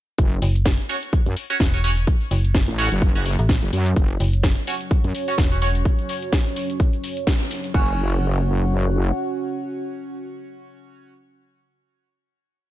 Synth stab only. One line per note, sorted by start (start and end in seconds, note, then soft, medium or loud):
0.89 0.96 C#4 medium
0.89 0.96 F#4 medium
0.89 0.96 C#5 medium
1.50 1.55 C#4 medium
1.50 1.55 F#4 medium
1.50 1.55 C#5 medium
1.74 1.79 C#4 medium
1.74 1.79 F#4 medium
1.74 1.79 C#5 medium
1.84 1.91 C#4 loud
1.84 1.91 F#4 medium
1.84 1.91 C#5 loud
2.78 2.89 C#4 loud
2.78 2.89 F#4 medium
2.78 2.89 C#5 loud
3.15 3.20 C#4 medium
3.15 3.20 F#4 medium
3.15 3.20 F#5 medium
4.67 4.74 C#4 medium
4.67 4.74 F#4 medium
4.67 4.74 C#5 medium
5.28 5.33 C#4 medium
5.28 5.33 F#4 medium
5.28 5.33 C#5 loud
5.52 5.57 C#4 medium
5.52 5.57 F#4 medium
5.52 5.57 C#5 medium
5.62 5.69 C#4 loud
5.62 5.69 F#4 medium
5.62 5.69 C#5 loud
7.74 11.14 C#4 medium
7.74 11.14 F#4 medium
7.74 11.14 C#5 loud